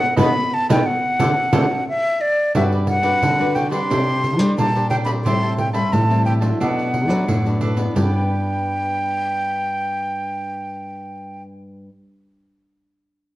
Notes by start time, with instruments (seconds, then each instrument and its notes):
Already playing: flute F#5
0.16 nylon-string guitar B2 A3 B3 D#4, cavaquinho A4 B4 D#5, flute B5, pandeiro
0.54 flute A5
0.69 nylon-string guitar B2 A3 B3 D#4, cavaquinho A4 B4 D#5, flute G5, pandeiro
0.86 flute F#5
1.19 nylon-string guitar D3 A3 C4 D4, cavaquinho A4 C5 D5, pandeiro
1.52 nylon-string guitar D3 A3 C4 D4, cavaquinho A4 C5 D5, pandeiro
1.89 flute E5
2.21 flute D5
2.55 nylon-string guitar G2 G3 D4 F#4 B4, cavaquinho F#4 G4 B4 D5, flute E5, pandeiro
2.73 cavaquinho G4 B4 D5, pandeiro
2.87 flute F#5, muted cavaquinho stroke, pandeiro
3.03 nylon-string guitar D4 F#4 B4, cavaquinho G4 B4 D5, pandeiro
3.22 nylon-string guitar D3, pandeiro
3.40 nylon-string guitar D4 F#4 B4, cavaquinho G4 B4 D5, pandeiro
3.55 cavaquinho F#4 G4 B4 D5, flute G5, pandeiro
3.70 nylon-string guitar G3 D4 G4, cavaquinho G4 B4 D5, flute C6, pandeiro
3.90 nylon-string guitar C3, cavaquinho D4 G4 C5 D5, pandeiro
4.09 pandeiro
4.22 muted cavaquinho stroke, pandeiro
4.38 nylon-string guitar G3 D4 G4, cavaquinho G4 C5 D5, pandeiro
4.58 nylon-string guitar A#2 G3, cavaquinho D4 G4 C5 D5, flute A5, pandeiro
4.75 nylon-string guitar G3 D4 G4, cavaquinho G4 C5 D5, pandeiro
4.90 cavaquinho D4 G4 C5 D5, flute G5, pandeiro
5.05 cavaquinho G4 C5 D5, flute B5, pandeiro
5.25 nylon-string guitar A2 G3 C4 E4, cavaquinho G4 C5 E5 A5, flute C6, pandeiro
5.43 cavaquinho C5 E5 A5, pandeiro
5.58 flute G5, muted cavaquinho stroke, pandeiro
5.73 nylon-string guitar G3 C4 E4, cavaquinho C5 E5 A5, flute B5, pandeiro
5.93 nylon-string guitar A2 E3, flute A5, pandeiro
6.10 nylon-string guitar G3 C4 E4, cavaquinho C5 E5 A5, pandeiro
6.25 cavaquinho G4 C5 E5 A5, flute G5, pandeiro
6.41 nylon-string guitar F#3 A3 D4, cavaquinho C5 E5 A5, pandeiro
6.60 nylon-string guitar B2, cavaquinho D4 A4 B4 D5, flute F#5, pandeiro
6.79 pandeiro
6.93 muted cavaquinho stroke, pandeiro
7.08 nylon-string guitar F#3 A3 D4, cavaquinho A4 B4 D5, pandeiro
7.28 nylon-string guitar F#2 A2, cavaquinho D4 A4 B4 D5, pandeiro
7.46 nylon-string guitar F#3 A3 D4, cavaquinho A4 B4 D5, pandeiro
7.61 cavaquinho D4 A4 B4 D5, pandeiro
7.77 nylon-string guitar B3 D4, cavaquinho A4 B4 D5, pandeiro
7.91 nylon-string guitar G2
7.96 nylon-string guitar G2, cavaquinho G4 B4 D5, flute G5, pandeiro
8.01 nylon-string guitar B3
8.06 nylon-string guitar D4